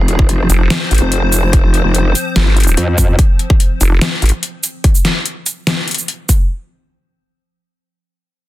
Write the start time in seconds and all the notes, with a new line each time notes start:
Already playing: F1 F3 C4 C5
0.08 closed hi-hat
0.19 kick
0.29 closed hi-hat
0.50 F1, closed hi-hat, shaker
0.70 snare, closed hi-hat
0.91 G#1, closed hi-hat
0.95 closed hi-hat
0.98 F1, closed hi-hat
1.12 closed hi-hat
1.32 closed hi-hat, shaker
1.53 kick, closed hi-hat
1.74 closed hi-hat
1.85 F1
1.95 closed hi-hat
2.15 closed hi-hat, shaker
2.36 G1, snare, closed hi-hat
2.57 closed hi-hat
2.60 closed hi-hat
2.63 closed hi-hat, shaker
2.77 F2, closed hi-hat
2.98 kick, closed hi-hat, shaker
3.09 F2
3.19 kick, closed hi-hat
3.39 closed hi-hat
3.50 kick
3.60 closed hi-hat
3.81 F1, closed hi-hat, shaker
4.01 snare, closed hi-hat
4.22 G#1, closed hi-hat
4.26 closed hi-hat
4.29 closed hi-hat
4.43 closed hi-hat
4.63 closed hi-hat, shaker
4.84 kick, closed hi-hat
4.95 shaker
5.05 snare, closed hi-hat
5.26 closed hi-hat
5.46 closed hi-hat, shaker
5.67 snare, closed hi-hat
5.88 closed hi-hat
5.91 closed hi-hat
5.94 closed hi-hat, shaker
6.08 closed hi-hat
6.29 kick, closed hi-hat, shaker